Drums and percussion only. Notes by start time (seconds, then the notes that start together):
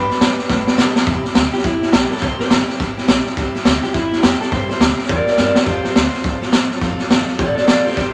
0.11 snare
0.21 snare, hi-hat pedal
0.39 snare
0.49 kick, snare
0.67 snare
0.78 snare, hi-hat pedal
0.96 snare
1.06 kick, snare
1.25 snare
1.35 snare, hi-hat pedal
1.53 snare
1.58 snare
1.64 kick, snare
1.82 snare
1.93 snare, hi-hat pedal
2.11 snare
2.17 snare
2.22 kick, snare
2.40 snare
2.50 snare, hi-hat pedal
2.69 snare
2.80 kick, snare
2.98 snare
3.08 snare, hi-hat pedal
3.26 snare
3.37 kick, snare
3.55 snare
3.65 snare, hi-hat pedal
3.83 snare
3.94 kick, snare
4.13 snare
4.23 snare, hi-hat pedal
4.42 snare
4.52 kick, snare
4.70 snare
4.81 snare, hi-hat pedal
4.99 snare
5.04 snare
5.09 kick, snare
5.27 snare
5.38 snare, hi-hat pedal
5.55 snare
5.66 kick, snare
5.85 snare
5.96 snare, hi-hat pedal
6.14 snare
6.24 kick, snare
6.42 snare
6.53 snare, hi-hat pedal
6.71 snare
6.81 kick, snare
6.99 snare
7.10 snare, hi-hat pedal
7.28 snare
7.38 kick, snare
7.57 snare
7.68 snare, hi-hat pedal
7.86 snare
7.91 snare
7.97 kick, snare